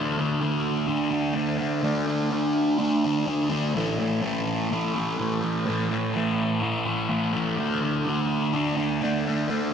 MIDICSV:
0, 0, Header, 1, 2, 480
1, 0, Start_track
1, 0, Tempo, 477707
1, 1863, Time_signature, 4, 2, 24, 8
1, 9783, End_track
2, 0, Start_track
2, 0, Title_t, "Distorted electric guitar"
2, 0, Program_c, 0, 30
2, 0, Note_on_c, 0, 50, 92
2, 0, Note_on_c, 0, 57, 97
2, 0, Note_on_c, 0, 62, 101
2, 176, Note_off_c, 0, 62, 0
2, 180, Note_on_c, 0, 62, 73
2, 198, Note_off_c, 0, 57, 0
2, 202, Note_on_c, 0, 57, 62
2, 403, Note_off_c, 0, 50, 0
2, 407, Note_on_c, 0, 50, 74
2, 420, Note_off_c, 0, 57, 0
2, 424, Note_on_c, 0, 57, 81
2, 430, Note_off_c, 0, 62, 0
2, 434, Note_on_c, 0, 62, 76
2, 863, Note_off_c, 0, 50, 0
2, 875, Note_on_c, 0, 50, 103
2, 883, Note_off_c, 0, 57, 0
2, 886, Note_off_c, 0, 62, 0
2, 887, Note_on_c, 0, 57, 96
2, 898, Note_on_c, 0, 62, 104
2, 1106, Note_off_c, 0, 62, 0
2, 1118, Note_on_c, 0, 62, 74
2, 1142, Note_off_c, 0, 57, 0
2, 1146, Note_on_c, 0, 57, 62
2, 1331, Note_off_c, 0, 50, 0
2, 1343, Note_on_c, 0, 50, 66
2, 1351, Note_off_c, 0, 57, 0
2, 1355, Note_on_c, 0, 57, 74
2, 1360, Note_off_c, 0, 62, 0
2, 1372, Note_on_c, 0, 62, 82
2, 1577, Note_off_c, 0, 62, 0
2, 1589, Note_on_c, 0, 62, 77
2, 1618, Note_off_c, 0, 57, 0
2, 1622, Note_on_c, 0, 57, 58
2, 1812, Note_off_c, 0, 50, 0
2, 1824, Note_on_c, 0, 50, 94
2, 1837, Note_off_c, 0, 57, 0
2, 1840, Note_off_c, 0, 62, 0
2, 1841, Note_on_c, 0, 57, 103
2, 1852, Note_on_c, 0, 62, 105
2, 2070, Note_off_c, 0, 62, 0
2, 2082, Note_on_c, 0, 62, 84
2, 2106, Note_off_c, 0, 57, 0
2, 2110, Note_on_c, 0, 57, 54
2, 2308, Note_off_c, 0, 50, 0
2, 2320, Note_on_c, 0, 50, 78
2, 2329, Note_off_c, 0, 57, 0
2, 2333, Note_on_c, 0, 57, 74
2, 2338, Note_off_c, 0, 62, 0
2, 2350, Note_on_c, 0, 62, 77
2, 2781, Note_off_c, 0, 50, 0
2, 2793, Note_on_c, 0, 50, 97
2, 2808, Note_off_c, 0, 57, 0
2, 2812, Note_on_c, 0, 57, 99
2, 2815, Note_off_c, 0, 62, 0
2, 2827, Note_on_c, 0, 62, 95
2, 3043, Note_off_c, 0, 62, 0
2, 3055, Note_on_c, 0, 62, 74
2, 3076, Note_off_c, 0, 57, 0
2, 3081, Note_on_c, 0, 57, 61
2, 3266, Note_off_c, 0, 50, 0
2, 3278, Note_on_c, 0, 50, 76
2, 3293, Note_off_c, 0, 57, 0
2, 3296, Note_off_c, 0, 62, 0
2, 3297, Note_on_c, 0, 57, 74
2, 3309, Note_on_c, 0, 62, 86
2, 3502, Note_off_c, 0, 62, 0
2, 3514, Note_on_c, 0, 62, 68
2, 3534, Note_off_c, 0, 57, 0
2, 3539, Note_on_c, 0, 57, 59
2, 3756, Note_off_c, 0, 62, 0
2, 3757, Note_off_c, 0, 50, 0
2, 3761, Note_on_c, 0, 45, 94
2, 3774, Note_off_c, 0, 57, 0
2, 3778, Note_on_c, 0, 52, 101
2, 3786, Note_on_c, 0, 57, 108
2, 4002, Note_off_c, 0, 57, 0
2, 4006, Note_on_c, 0, 57, 76
2, 4033, Note_off_c, 0, 52, 0
2, 4037, Note_on_c, 0, 52, 64
2, 4234, Note_off_c, 0, 45, 0
2, 4238, Note_on_c, 0, 45, 68
2, 4259, Note_off_c, 0, 52, 0
2, 4263, Note_on_c, 0, 52, 74
2, 4272, Note_off_c, 0, 57, 0
2, 4276, Note_on_c, 0, 57, 79
2, 4711, Note_off_c, 0, 45, 0
2, 4723, Note_on_c, 0, 45, 87
2, 4735, Note_off_c, 0, 52, 0
2, 4747, Note_on_c, 0, 52, 96
2, 4753, Note_off_c, 0, 57, 0
2, 4757, Note_on_c, 0, 57, 112
2, 4969, Note_off_c, 0, 57, 0
2, 4973, Note_on_c, 0, 57, 71
2, 4989, Note_off_c, 0, 52, 0
2, 5001, Note_on_c, 0, 52, 55
2, 5192, Note_off_c, 0, 45, 0
2, 5204, Note_on_c, 0, 45, 71
2, 5208, Note_off_c, 0, 52, 0
2, 5220, Note_on_c, 0, 52, 75
2, 5231, Note_off_c, 0, 57, 0
2, 5235, Note_on_c, 0, 57, 78
2, 5431, Note_off_c, 0, 57, 0
2, 5435, Note_on_c, 0, 57, 68
2, 5450, Note_off_c, 0, 52, 0
2, 5462, Note_on_c, 0, 52, 57
2, 5662, Note_off_c, 0, 45, 0
2, 5674, Note_on_c, 0, 45, 92
2, 5683, Note_off_c, 0, 52, 0
2, 5695, Note_on_c, 0, 52, 101
2, 5707, Note_off_c, 0, 57, 0
2, 5711, Note_on_c, 0, 57, 104
2, 5915, Note_off_c, 0, 57, 0
2, 5919, Note_on_c, 0, 57, 74
2, 5940, Note_off_c, 0, 52, 0
2, 5953, Note_on_c, 0, 52, 60
2, 6152, Note_off_c, 0, 45, 0
2, 6164, Note_on_c, 0, 45, 71
2, 6171, Note_off_c, 0, 52, 0
2, 6183, Note_on_c, 0, 52, 79
2, 6193, Note_off_c, 0, 57, 0
2, 6197, Note_on_c, 0, 57, 75
2, 6628, Note_off_c, 0, 45, 0
2, 6640, Note_on_c, 0, 45, 94
2, 6647, Note_off_c, 0, 52, 0
2, 6659, Note_on_c, 0, 52, 101
2, 6661, Note_off_c, 0, 57, 0
2, 6665, Note_on_c, 0, 57, 103
2, 6881, Note_off_c, 0, 57, 0
2, 6885, Note_on_c, 0, 57, 70
2, 6901, Note_off_c, 0, 52, 0
2, 6913, Note_on_c, 0, 52, 68
2, 7114, Note_off_c, 0, 45, 0
2, 7120, Note_off_c, 0, 52, 0
2, 7126, Note_on_c, 0, 45, 69
2, 7132, Note_on_c, 0, 52, 76
2, 7148, Note_off_c, 0, 57, 0
2, 7152, Note_on_c, 0, 57, 84
2, 7360, Note_off_c, 0, 57, 0
2, 7364, Note_on_c, 0, 57, 75
2, 7384, Note_off_c, 0, 52, 0
2, 7397, Note_on_c, 0, 52, 63
2, 7599, Note_off_c, 0, 45, 0
2, 7603, Note_on_c, 0, 50, 96
2, 7616, Note_off_c, 0, 52, 0
2, 7627, Note_off_c, 0, 57, 0
2, 7627, Note_on_c, 0, 57, 103
2, 7640, Note_on_c, 0, 62, 97
2, 7849, Note_off_c, 0, 62, 0
2, 7853, Note_on_c, 0, 62, 75
2, 7880, Note_off_c, 0, 57, 0
2, 7884, Note_on_c, 0, 57, 62
2, 8094, Note_off_c, 0, 50, 0
2, 8098, Note_on_c, 0, 50, 72
2, 8117, Note_off_c, 0, 57, 0
2, 8121, Note_on_c, 0, 57, 78
2, 8125, Note_off_c, 0, 62, 0
2, 8129, Note_on_c, 0, 62, 78
2, 8563, Note_off_c, 0, 50, 0
2, 8575, Note_on_c, 0, 50, 98
2, 8582, Note_off_c, 0, 57, 0
2, 8586, Note_on_c, 0, 57, 107
2, 8587, Note_off_c, 0, 62, 0
2, 8599, Note_on_c, 0, 62, 113
2, 8796, Note_off_c, 0, 62, 0
2, 8808, Note_on_c, 0, 62, 74
2, 8831, Note_off_c, 0, 57, 0
2, 8836, Note_on_c, 0, 57, 67
2, 9041, Note_off_c, 0, 50, 0
2, 9053, Note_on_c, 0, 50, 75
2, 9070, Note_off_c, 0, 62, 0
2, 9072, Note_off_c, 0, 57, 0
2, 9076, Note_on_c, 0, 57, 88
2, 9082, Note_on_c, 0, 62, 77
2, 9287, Note_off_c, 0, 62, 0
2, 9300, Note_on_c, 0, 62, 74
2, 9323, Note_off_c, 0, 57, 0
2, 9327, Note_on_c, 0, 57, 59
2, 9510, Note_off_c, 0, 50, 0
2, 9522, Note_on_c, 0, 50, 93
2, 9538, Note_off_c, 0, 62, 0
2, 9541, Note_off_c, 0, 57, 0
2, 9545, Note_on_c, 0, 57, 102
2, 9550, Note_on_c, 0, 62, 104
2, 9751, Note_off_c, 0, 62, 0
2, 9783, Note_off_c, 0, 50, 0
2, 9783, Note_off_c, 0, 57, 0
2, 9783, End_track
0, 0, End_of_file